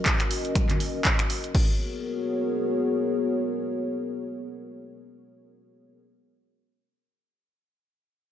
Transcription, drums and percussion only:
0.06 kick medium
0.06 clap loud
0.06 closed hi-hat medium
0.20 finger snap medium
0.20 clap soft
0.20 closed hi-hat medium
0.31 open hi-hat medium
0.45 closed hi-hat soft
0.55 finger snap medium
0.55 kick loud
0.55 closed hi-hat medium
0.55 high conga medium
0.69 clap soft
0.69 closed hi-hat soft
0.69 low conga medium
0.80 open hi-hat medium
1.05 kick medium
1.05 clap loud
1.05 closed hi-hat medium
1.19 finger snap medium
1.19 closed hi-hat medium
1.30 open hi-hat medium
1.44 closed hi-hat soft
1.55 kick loud
1.55 crash medium

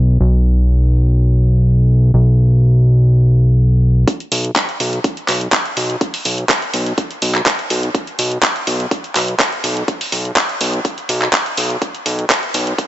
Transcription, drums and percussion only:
4.08 kick loud
4.08 closed hi-hat medium
4.20 closed hi-hat soft
4.32 open hi-hat loud
4.45 closed hi-hat soft
4.56 kick loud
4.56 clap loud
4.56 closed hi-hat medium
4.69 closed hi-hat soft
4.80 open hi-hat loud
4.93 closed hi-hat soft
5.04 kick loud
5.04 closed hi-hat medium
5.17 closed hi-hat soft
5.28 clap soft
5.28 open hi-hat loud
5.41 closed hi-hat soft
5.52 kick loud
5.52 clap loud
5.52 closed hi-hat medium
5.65 closed hi-hat soft
5.77 open hi-hat loud
5.90 closed hi-hat soft
6.01 kick loud
6.01 closed hi-hat medium
6.14 open hi-hat medium
6.25 open hi-hat loud
6.38 closed hi-hat soft
6.49 kick loud
6.49 clap loud
6.49 closed hi-hat medium
6.62 closed hi-hat soft
6.74 open hi-hat loud
6.86 closed hi-hat soft
6.98 kick loud
6.98 closed hi-hat medium
7.11 closed hi-hat soft
7.22 open hi-hat loud
7.35 clap soft
7.35 closed hi-hat soft
7.46 kick loud
7.46 clap loud
7.46 closed hi-hat medium
7.59 closed hi-hat soft
7.70 open hi-hat loud
7.83 closed hi-hat soft
7.95 kick loud
7.95 closed hi-hat medium
8.07 closed hi-hat soft
8.19 open hi-hat loud
8.32 closed hi-hat soft
8.43 kick loud
8.43 clap loud
8.43 closed hi-hat medium
8.56 closed hi-hat soft
8.67 open hi-hat loud
8.80 closed hi-hat soft
8.91 kick loud
8.91 closed hi-hat medium
9.04 closed hi-hat soft
9.15 clap soft
9.15 open hi-hat loud
9.28 closed hi-hat soft
9.40 kick loud
9.40 clap loud
9.40 closed hi-hat medium
9.53 closed hi-hat soft
9.64 open hi-hat loud
9.77 closed hi-hat soft
9.88 kick loud
9.88 closed hi-hat medium
10.01 open hi-hat medium
10.12 open hi-hat loud
10.25 closed hi-hat soft
10.36 kick loud
10.36 clap loud
10.36 closed hi-hat medium
10.49 closed hi-hat soft
10.61 open hi-hat loud
10.74 closed hi-hat soft
10.85 kick loud
10.85 closed hi-hat medium
10.98 closed hi-hat soft
11.09 open hi-hat loud
11.22 clap soft
11.22 closed hi-hat soft
11.33 kick loud
11.33 clap loud
11.33 closed hi-hat medium
11.46 closed hi-hat soft
11.57 open hi-hat loud
11.70 closed hi-hat soft
11.82 kick loud
11.82 closed hi-hat medium
11.95 closed hi-hat soft
12.06 open hi-hat loud
12.19 closed hi-hat soft
12.30 kick loud
12.30 clap loud
12.30 closed hi-hat medium
12.43 closed hi-hat soft
12.54 open hi-hat loud
12.67 closed hi-hat soft
12.78 kick loud
12.78 closed hi-hat medium

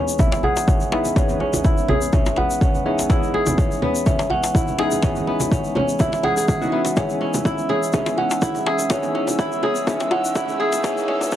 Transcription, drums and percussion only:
0.08 shaker medium
0.19 kick loud
0.19 high conga loud
0.19 shaker medium
0.32 muted conga medium
0.32 djembe slap loud
0.32 shaker soft
0.43 high conga medium
0.43 djembe bass medium
0.57 djembe slap medium
0.57 shaker medium
0.68 kick loud
0.68 muted conga soft
0.68 shaker medium
0.80 high conga medium
0.80 shaker soft
0.92 djembe slap loud
1.05 muted conga soft
1.05 shaker medium
1.16 kick loud
1.16 djembe slap loud
1.16 djembe tone medium
1.16 shaker medium
1.29 low conga medium
1.29 shaker soft
1.40 djembe tone medium
1.53 muted conga soft
1.53 high conga medium
1.53 djembe tone medium
1.53 shaker medium
1.64 kick loud
1.64 shaker medium
1.78 shaker soft
1.88 high conga loud
1.88 djembe bass medium
2.02 shaker medium
2.13 kick loud
2.13 djembe tone medium
2.13 high conga loud
2.13 shaker medium
2.26 muted conga medium
2.26 djembe slap loud
2.26 shaker soft
2.36 djembe slap medium
2.36 high conga medium
2.36 djembe tone medium
2.36 djembe bass medium
2.50 shaker medium
2.61 kick loud
2.61 shaker medium
2.75 high conga medium
2.75 shaker soft
2.99 muted conga soft
2.99 djembe slap medium
2.99 shaker medium
3.10 kick loud
3.10 djembe slap loud
3.10 djembe tone medium
3.10 shaker medium
3.23 shaker soft
3.34 djembe tone medium
3.46 muted conga soft
3.46 djembe tone medium
3.46 high conga medium
3.46 shaker medium
3.58 kick loud
3.58 shaker medium
3.71 shaker soft
3.82 muted conga soft
3.82 high conga loud
3.95 shaker medium
4.06 kick loud
4.06 high conga loud
4.06 shaker medium
4.19 djembe slap loud
4.19 muted conga medium
4.19 shaker soft
4.30 high conga medium
4.30 djembe bass medium
4.44 djembe slap loud
4.44 shaker medium
4.55 kick loud
4.55 muted conga soft
4.55 shaker medium
4.68 high conga medium
4.68 shaker soft
4.79 djembe slap loud
4.91 muted conga medium
4.91 shaker medium
5.02 kick loud
5.02 djembe slap loud
5.02 djembe tone medium
5.02 shaker medium
5.16 low conga medium
5.16 shaker soft
5.27 djembe tone medium
5.40 muted conga soft
5.40 high conga medium
5.40 djembe tone medium
5.40 shaker medium
5.52 kick loud
5.52 shaker medium
5.64 shaker soft
5.75 high conga loud
5.75 djembe bass medium
5.89 shaker medium
5.99 kick loud
5.99 djembe tone medium
5.99 high conga loud
5.99 shaker medium
6.12 muted conga soft
6.12 djembe slap medium
6.12 shaker soft
6.23 djembe slap medium
6.23 high conga medium
6.23 djembe tone medium
6.23 djembe bass medium
6.37 shaker medium
6.48 kick loud
6.48 muted conga soft
6.48 shaker medium
6.62 high conga medium
6.62 shaker soft
6.85 djembe slap medium
6.85 muted conga soft
6.85 shaker medium
6.96 kick loud
6.96 mid tom soft
6.96 djembe slap loud
6.96 djembe tone medium
6.96 shaker medium
7.09 shaker soft
7.21 djembe tone medium
7.34 muted conga soft
7.34 high conga medium
7.34 djembe tone medium
7.34 shaker medium
7.45 kick loud
7.45 mid tom soft
7.45 shaker medium
7.58 shaker soft
7.69 muted conga soft
7.69 high conga medium
7.83 shaker medium
7.93 kick loud
7.93 mid tom medium
7.93 high conga loud
7.93 shaker medium
8.06 djembe slap loud
8.06 muted conga soft
8.06 shaker soft
8.17 high conga medium
8.17 djembe bass medium
8.31 djembe slap loud
8.31 shaker medium
8.42 kick loud
8.42 mid tom medium
8.42 muted conga soft
8.42 shaker medium
8.55 high conga medium
8.55 shaker soft
8.66 djembe slap loud
8.79 muted conga medium
8.79 shaker medium
8.90 kick loud
8.90 mid tom medium
8.90 djembe slap loud
8.90 djembe tone medium
8.90 shaker medium
9.03 low conga medium
9.03 shaker soft
9.15 djembe tone medium
9.27 muted conga soft
9.27 high conga medium
9.27 djembe tone medium
9.27 shaker medium
9.39 kick loud
9.39 mid tom medium
9.39 shaker medium
9.52 shaker soft
9.63 high conga loud
9.63 djembe bass medium
9.75 shaker medium
9.87 kick loud
9.87 mid tom medium
9.87 high conga loud
9.87 djembe tone medium
9.87 shaker medium
10.00 muted conga soft
10.00 djembe slap medium
10.00 shaker soft
10.11 djembe slap medium
10.11 djembe tone medium
10.11 high conga medium
10.11 djembe bass loud
10.25 shaker medium
10.35 kick loud
10.35 mid tom medium
10.35 muted conga soft
10.35 shaker medium
10.48 high conga medium
10.48 shaker soft
10.72 muted conga medium
10.72 djembe slap medium
10.72 shaker medium
10.84 kick loud
10.84 mid tom medium
10.84 djembe slap medium
10.84 djembe tone medium
10.84 shaker medium
10.97 shaker soft
11.08 mid tom medium
11.08 djembe tone medium
11.21 muted conga soft
11.21 high conga medium
11.21 djembe tone medium
11.21 shaker medium
11.32 kick loud
11.32 mid tom medium
11.32 shaker medium

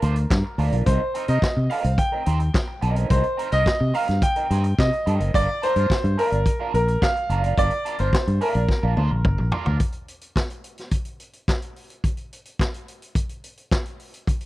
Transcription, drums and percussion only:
0.02 closed hi-hat medium
0.16 closed hi-hat soft
0.30 kick loud
0.30 snare loud
0.30 clap medium
0.59 open hi-hat medium
0.72 closed hi-hat soft
0.86 kick loud
0.86 closed hi-hat medium
1.15 closed hi-hat medium
1.28 closed hi-hat soft
1.42 kick loud
1.42 snare loud
1.42 clap medium
1.71 open hi-hat medium
1.84 closed hi-hat medium
1.98 kick loud
1.98 closed hi-hat medium
2.26 closed hi-hat medium
2.40 closed hi-hat soft
2.54 kick loud
2.54 snare loud
2.54 clap medium
2.82 closed hi-hat medium
2.96 closed hi-hat medium
3.10 kick loud
3.10 closed hi-hat medium
3.24 closed hi-hat soft
3.39 closed hi-hat medium
3.52 closed hi-hat medium
3.66 kick loud
3.66 snare loud
3.66 clap medium
3.94 open hi-hat medium
4.08 snare soft
4.08 closed hi-hat medium
4.22 kick loud
4.22 closed hi-hat medium
4.36 closed hi-hat soft
4.51 closed hi-hat medium
4.64 closed hi-hat soft
4.79 kick loud
4.79 snare loud
4.79 clap medium
4.93 closed hi-hat soft
5.07 closed hi-hat medium
5.20 closed hi-hat soft
5.34 kick loud
5.34 closed hi-hat medium
5.63 closed hi-hat medium
5.76 closed hi-hat soft
5.90 kick loud
5.90 snare loud
5.90 clap medium
6.04 closed hi-hat soft
6.19 open hi-hat medium
6.32 closed hi-hat soft
6.46 kick medium
6.46 closed hi-hat medium
6.74 closed hi-hat medium
6.88 closed hi-hat soft
7.02 kick loud
7.02 snare loud
7.02 clap medium
7.16 closed hi-hat soft
7.30 closed hi-hat soft
7.44 closed hi-hat medium
7.58 kick loud
7.58 closed hi-hat medium
7.71 closed hi-hat soft
7.86 closed hi-hat medium
7.99 closed hi-hat soft
8.13 kick loud
8.13 snare loud
8.13 clap medium
8.27 closed hi-hat soft
8.41 open hi-hat medium
8.55 closed hi-hat soft
8.69 kick medium
8.69 snare medium
8.97 high tom medium
9.25 kick loud
9.25 mid tom medium
9.38 mid tom medium
9.52 floor tom loud
9.66 floor tom loud
9.80 kick loud
9.80 closed hi-hat medium
9.92 closed hi-hat soft
10.08 closed hi-hat medium
10.21 closed hi-hat soft
10.36 kick medium
10.36 snare loud
10.36 clap medium
10.50 closed hi-hat soft
10.64 closed hi-hat medium
10.78 snare soft
10.78 closed hi-hat soft
10.91 kick loud
10.91 closed hi-hat medium
11.05 closed hi-hat soft
11.20 closed hi-hat medium
11.33 closed hi-hat soft
11.48 kick loud
11.48 snare loud
11.48 clap medium
11.62 closed hi-hat soft
11.76 open hi-hat soft
11.90 closed hi-hat soft
12.04 kick loud
12.04 closed hi-hat medium
12.17 closed hi-hat soft
12.33 closed hi-hat medium
12.45 closed hi-hat soft
12.59 kick medium
12.59 snare loud
12.59 clap medium
12.74 closed hi-hat soft
12.88 closed hi-hat medium
13.02 closed hi-hat medium
13.15 kick loud
13.15 closed hi-hat medium
13.29 closed hi-hat soft
13.44 closed hi-hat medium
13.57 closed hi-hat soft
13.71 kick loud
13.71 snare loud
13.71 clap medium
13.85 closed hi-hat soft
14.00 open hi-hat soft
14.14 closed hi-hat medium
14.27 kick loud
14.27 closed hi-hat medium
14.41 closed hi-hat soft

